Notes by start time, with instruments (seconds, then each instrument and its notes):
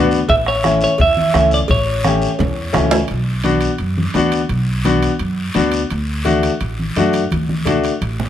Already playing: upright bass D2, upright piano B3 D4 F#4
0.11 short guiro
0.29 upright bass A1, clean electric guitar E5, bombo low, cowbell, long guiro
0.46 clean electric guitar C#5, bombo rim
0.63 upright piano A3 C#4 E4, bombo rim, high conga, short guiro
0.81 clean electric guitar C#5, short guiro
0.98 upright bass E2, clean electric guitar E5, bombo low, cowbell, long guiro
1.17 high conga
1.34 upright bass C#2, upright piano A3 C#4 E4, bombo rim, high conga, short guiro
1.51 clean electric guitar D5, short guiro
1.68 upright bass A1, clean electric guitar C#5, bombo low, cowbell, long guiro
2.04 upright piano A3 C#4 G4, bombo rim, high conga, short guiro
2.22 short guiro
2.39 upright bass E2, bombo low, cowbell, low conga, high timbale, long guiro
2.73 upright bass C#2, upright piano A3 C#4 E4, bombo rim, high conga, low conga, low timbale, short guiro
2.91 low timbale, short guiro
3.08 upright bass B1, high timbale, long guiro
3.44 upright piano B3 D4 F#4, high conga, high timbale, short guiro
3.61 high timbale, short guiro
3.78 upright bass F#2, high timbale, long guiro
3.98 high conga
4.14 upright bass D2, upright piano B3 D4 F#4, high conga, high timbale, low timbale, short guiro
4.32 high timbale, short guiro
4.49 upright bass B1, high timbale, long guiro
4.85 upright piano B3 D4 F#4, high conga, high timbale, short guiro
5.02 high timbale, short guiro
5.19 upright bass F#2, high timbale, long guiro
5.54 upright bass D2, upright piano B3 D4 F#4, high conga, high timbale, short guiro
5.72 high timbale, short guiro
5.90 upright bass D2, high timbale, long guiro
6.25 upright piano A3 D4 F#4, high conga, high timbale, short guiro
6.43 high timbale, short guiro
6.61 upright bass A1, high timbale, long guiro
6.79 high conga
6.96 upright bass F#2, upright piano A3 D4 F#4, high conga, high timbale, low timbale, short guiro
7.13 high timbale, short guiro
7.31 upright bass D2, high conga, high timbale, long guiro
7.49 high conga
7.65 upright piano A3 D4 F#4, low conga, high timbale, short guiro
7.83 high timbale, short guiro
8.02 upright bass A1, high timbale, long guiro
8.20 low conga